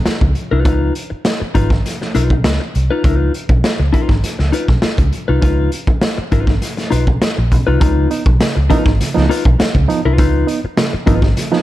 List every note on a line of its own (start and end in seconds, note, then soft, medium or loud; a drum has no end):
0.06 muted clean electric guitar stroke soft
0.06 muted fingered electric bass stroke soft
0.06 snare loud
0.06 closed hi-hat medium
0.21 0.33 C#2 medium
0.21 muted clean electric guitar stroke soft
0.21 kick medium
0.35 closed hi-hat medium
0.51 0.65 C2 medium
0.51 0.63 D#4 medium
0.51 0.64 F4 medium
0.51 0.64 B4 medium
0.65 0.90 C#2 loud
0.65 0.93 D#4 medium
0.65 0.93 F4 medium
0.65 0.93 B4 medium
0.65 kick loud
0.65 closed hi-hat medium
0.95 closed hi-hat medium
1.10 muted clean electric guitar stroke soft
1.10 muted fingered electric bass stroke soft
1.25 snare loud
1.25 closed hi-hat medium
1.40 muted clean electric guitar stroke soft
1.40 muted fingered electric bass stroke soft
1.55 1.80 G#1 medium
1.55 1.69 D#4 medium
1.55 1.69 F4 medium
1.55 1.70 B4 medium
1.55 kick medium
1.55 closed hi-hat medium
1.70 muted clean electric guitar stroke soft
1.70 kick loud
1.70 snare soft
1.86 snare soft
1.86 closed hi-hat medium
2.01 muted clean electric guitar stroke soft
2.01 snare soft
2.15 2.45 B1 medium
2.15 2.35 D#4 medium
2.15 2.31 F4 medium
2.15 2.30 B4 medium
2.15 closed hi-hat medium
2.30 muted clean electric guitar stroke soft
2.30 kick medium
2.44 2.58 C#2 medium
2.44 muted clean electric guitar stroke soft
2.44 snare loud
2.44 closed hi-hat medium
2.60 muted clean electric guitar stroke soft
2.75 2.88 C2 medium
2.75 closed hi-hat medium
2.91 3.03 D#4 medium
2.91 3.03 F4 medium
2.91 3.03 B4 medium
3.04 3.29 C#2 loud
3.04 3.15 D4 medium
3.04 3.16 E4 medium
3.04 3.17 A#4 medium
3.04 kick loud
3.04 closed hi-hat medium
3.15 3.32 D#4 medium
3.15 3.32 F4 medium
3.15 3.32 B4 medium
3.34 closed hi-hat medium
3.49 3.61 B1 medium
3.49 muted clean electric guitar stroke soft
3.49 kick medium
3.64 snare loud
3.64 closed hi-hat medium
3.80 3.91 C#2 medium
3.80 muted clean electric guitar stroke soft
3.93 4.14 D#4 medium
3.93 4.09 F4 medium
3.93 4.08 B4 medium
3.93 kick medium
3.93 closed hi-hat medium
4.09 4.21 G#1 medium
4.09 muted clean electric guitar stroke soft
4.09 kick loud
4.09 snare soft
4.24 muted fingered electric bass stroke soft
4.24 snare soft
4.24 closed hi-hat medium
4.39 4.51 C#2 medium
4.39 muted clean electric guitar stroke soft
4.39 snare soft
4.53 4.67 D#4 medium
4.53 4.67 F4 medium
4.53 4.67 B4 medium
4.53 closed hi-hat medium
4.68 4.80 B1 medium
4.68 muted clean electric guitar stroke soft
4.68 kick medium
4.68 snare soft
4.82 muted clean electric guitar stroke soft
4.82 muted fingered electric bass stroke soft
4.82 snare loud
4.82 closed hi-hat medium
4.98 5.10 C#2 medium
4.98 muted clean electric guitar stroke medium
4.98 kick medium
4.98 closed hi-hat medium
5.13 closed hi-hat medium
5.28 5.40 C2 medium
5.28 5.40 D#4 medium
5.28 5.41 F4 medium
5.28 5.41 B4 medium
5.41 5.67 C#2 loud
5.41 5.70 D#4 medium
5.41 5.70 F4 medium
5.41 5.70 B4 medium
5.41 kick medium
5.41 closed hi-hat medium
5.72 closed hi-hat medium
5.87 muted fingered electric bass stroke soft
5.87 muted clean electric guitar stroke soft
5.87 kick medium
6.01 snare loud
6.01 closed hi-hat medium
6.18 muted clean electric guitar stroke soft
6.18 muted fingered electric bass stroke soft
6.32 6.57 G#1 medium
6.32 6.53 D#4 medium
6.32 6.46 F4 medium
6.32 6.45 B4 medium
6.32 kick medium
6.32 closed hi-hat medium
6.47 muted clean electric guitar stroke soft
6.47 kick medium
6.47 snare soft
6.62 snare soft
6.62 closed hi-hat medium
6.77 muted clean electric guitar stroke soft
6.77 snare soft
6.77 closed hi-hat medium
6.91 7.17 B1 medium
6.91 7.05 D#4 medium
6.91 7.05 F4 medium
6.91 7.06 B4 loud
6.91 closed hi-hat medium
7.07 kick medium
7.22 muted clean electric guitar stroke soft
7.22 snare loud
7.22 closed hi-hat medium
7.37 7.52 A#1 medium
7.37 muted clean electric guitar stroke soft
7.52 7.65 B1 loud
7.52 kick medium
7.52 closed hi-hat medium
7.67 7.79 C2 medium
7.67 7.79 D#4 medium
7.67 7.79 F4 medium
7.67 7.79 B4 medium
7.80 8.06 C#2 loud
7.80 7.93 C#3 medium
7.80 8.08 D#4 medium
7.80 8.08 F4 medium
7.80 8.09 B4 medium
7.80 kick loud
7.80 closed hi-hat medium
8.10 8.22 B3 medium
8.10 8.23 D#4 medium
8.10 closed hi-hat medium
8.26 8.38 B1 loud
8.26 muted clean electric guitar stroke soft
8.26 kick loud
8.40 8.52 C#3 medium
8.40 snare loud
8.40 closed hi-hat medium
8.56 8.68 C#2 medium
8.56 muted clean electric guitar stroke soft
8.70 8.82 F3 medium
8.70 8.82 B3 medium
8.70 8.91 D#4 medium
8.70 8.82 D#4 loud
8.70 8.86 F4 medium
8.70 8.85 B4 medium
8.70 kick medium
8.70 closed hi-hat medium
8.85 8.97 G#1 medium
8.85 8.91 B3 soft
8.85 8.91 D#4 soft
8.85 muted clean electric guitar stroke medium
8.85 kick loud
8.85 snare soft
8.99 9.11 C#3 medium
8.99 muted fingered electric bass stroke soft
8.99 snare soft
8.99 closed hi-hat loud
9.14 9.28 C#2 medium
9.14 9.25 F3 medium
9.14 9.25 B3 medium
9.14 9.26 D#4 medium
9.14 muted clean electric guitar stroke soft
9.14 snare soft
9.29 9.43 D#4 medium
9.29 9.44 F4 loud
9.29 9.44 B4 loud
9.29 closed hi-hat medium
9.45 9.57 B1 medium
9.45 kick loud
9.59 9.65 B3 soft
9.59 9.65 D#4 soft
9.59 muted clean electric guitar stroke soft
9.59 snare loud
9.59 closed hi-hat medium
9.75 9.86 C#2 medium
9.75 9.85 C#3 medium
9.75 muted clean electric guitar stroke medium
9.75 kick medium
9.88 10.00 F3 medium
9.88 10.00 B3 medium
9.88 10.01 D#4 medium
9.88 closed hi-hat medium
10.05 10.19 C2 medium
10.05 10.18 D#4 medium
10.05 10.19 F4 medium
10.05 10.19 B4 medium
10.17 10.43 C#2 loud
10.17 10.30 C#3 medium
10.17 10.46 D#4 medium
10.17 10.46 F4 medium
10.17 10.47 B4 medium
10.17 kick loud
10.17 closed hi-hat medium
10.47 10.59 B3 medium
10.47 10.60 D#4 medium
10.47 closed hi-hat medium
10.64 muted fingered electric bass stroke soft
10.64 muted clean electric guitar stroke soft
10.77 10.89 C#3 medium
10.77 snare loud
10.77 closed hi-hat medium
10.93 muted clean electric guitar stroke soft
10.93 muted fingered electric bass stroke medium
11.06 11.32 G#1 medium
11.06 11.19 F3 medium
11.06 11.19 B3 medium
11.06 11.27 D#4 medium
11.06 11.19 D#4 medium
11.06 11.23 F4 loud
11.06 11.22 B4 medium
11.06 kick medium
11.06 closed hi-hat medium
11.22 11.28 B3 soft
11.22 11.28 D#4 soft
11.22 muted clean electric guitar stroke soft
11.22 kick loud
11.22 snare soft
11.37 11.49 C#3 medium
11.37 snare soft
11.37 closed hi-hat loud
11.52 11.62 F3 medium
11.52 11.62 B3 medium
11.52 11.62 D#4 medium
11.52 muted clean electric guitar stroke soft
11.52 snare soft